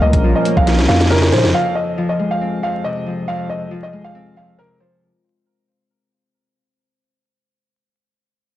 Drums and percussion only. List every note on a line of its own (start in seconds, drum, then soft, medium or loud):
0.13 kick medium
0.13 closed hi-hat medium
0.45 closed hi-hat medium
0.57 kick loud
0.67 snare medium
0.67 closed hi-hat medium
0.73 snare medium
0.79 snare medium
0.79 closed hi-hat soft
0.84 snare medium
0.89 snare medium
0.95 snare medium
1.00 snare medium
1.00 closed hi-hat medium
1.06 snare medium
1.11 snare medium
1.16 snare medium
1.22 snare loud
1.27 snare medium
1.32 snare loud
1.32 open hi-hat medium
1.38 snare medium
1.44 snare loud
1.49 snare loud